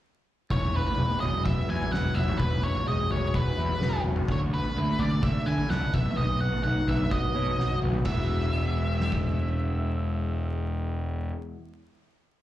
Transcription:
0.50 E1 E2 C#5, kick, floor tom
0.63 floor tom
0.76 B4
0.86 floor tom
0.98 E1 G#3
1.20 E1 F#3 D#5, floor tom
1.45 E1 B3 E5, kick, floor tom, mid tom
1.68 E2 E4 G#5
1.82 floor tom
1.91 E1 B3 F#5, snare, mid tom
2.15 E1 F#3 E5, mid tom
2.28 floor tom
2.38 E1 E2 B4, kick, floor tom
2.51 floor tom
2.63 C#5
2.75 floor tom
2.86 E1 G#3 D#5
3.10 E1 F#3 C#5, floor tom
3.34 E1 B3 B4, kick, floor tom, mid tom
3.57 E2 E4
3.69 floor tom
3.81 E1 B3, snare, mid tom
4.04 E1 F#3, mid tom
4.16 floor tom
4.27 D2 D3, kick, floor tom
4.32 C#5
4.40 floor tom
4.54 B4
4.63 floor tom
4.76 D2 A3
4.99 D2 D3 D5, floor tom
5.22 D2 D4 E5, kick, floor tom, mid tom
5.46 D3 E4 G#5
5.58 floor tom
5.70 C#2 D4 F#5, snare, mid tom
5.94 B1 B3 E5, kick, mid tom
6.06 floor tom
6.17 B1 B3 D#5, floor tom
6.41 F#5
6.52 floor tom
6.63 B1 D#4 F#5
6.87 B1 B3 E5, floor tom
7.00 floor tom
7.11 B1 F#4 D#5, kick, floor tom
7.35 B2 C#5
7.47 floor tom
7.59 B1 F#4, snare
7.70 high tom
7.82 B1 B3, mid tom
7.93 floor tom
8.04 E1 E2 E3 G#3 B3 E4 F#4 E5, kick, crash
9.00 snare
9.12 kick

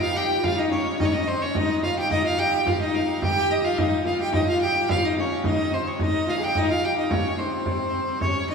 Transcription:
Already playing: C3 G3
0.00 F4 F5
0.14 G4 G5
0.42 F4 F5, frame drum
0.56 D#4 D#5
0.69 C#4 C#5, frame drum
0.99 D#4 D#5, frame drum
1.05 C#5
1.11 D#4 D#5
1.16 C#4
1.20 D#4
1.27 C4 C5
1.42 C#4 C#5
1.55 D#4 D#5, frame drum
1.83 F4 F5, frame drum
1.97 G4 G5
2.11 D#4 D#5, frame drum
2.24 F4 F5
2.38 G4 G5
2.67 F4 F5, frame drum
2.80 D#4 D#5
2.94 F5, frame drum
3.22 G4 G5, frame drum
3.51 D#5
3.64 F4 F5
3.78 D#4 D#5, frame drum
4.05 F4 F5, frame drum
4.20 G4 G5
4.33 C3 G3 D#4 D#5, frame drum
4.48 F4 F5
4.61 G4 G5
4.89 F4 F5, frame drum
5.03 D#4 D#5
5.17 C#4 C#5, frame drum
5.44 D#4 D#5, frame drum
5.72 C4 C5
5.87 C#5
5.99 D#4 D#5, frame drum
6.26 F4 F5, frame drum
6.37 G#4
6.42 G4 G5
6.55 D#4 D#5, frame drum
6.69 F4 F5
6.84 G4 G5
6.98 D#4 D#5
7.11 C#4 C#5, frame drum
7.33 C#4
7.38 C4 C5, frame drum
7.66 frame drum
8.21 C#4 C#5, frame drum
8.48 D#4 D#5, frame drum

